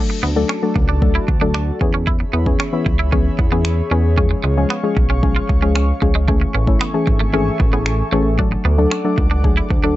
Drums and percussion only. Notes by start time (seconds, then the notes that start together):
0.49 finger snap
0.76 kick
1.02 kick
1.28 kick
1.54 finger snap
1.81 kick
2.07 kick
2.46 kick
2.60 finger snap
2.86 kick
3.12 kick
3.39 kick
3.65 finger snap
4.18 kick
4.70 finger snap
4.97 kick
5.23 kick
5.49 kick
5.75 finger snap
6.02 kick
6.28 kick
6.67 kick
6.81 finger snap
7.07 kick
7.60 kick
7.86 finger snap
8.39 kick
8.91 finger snap
9.18 kick
9.44 kick
9.70 kick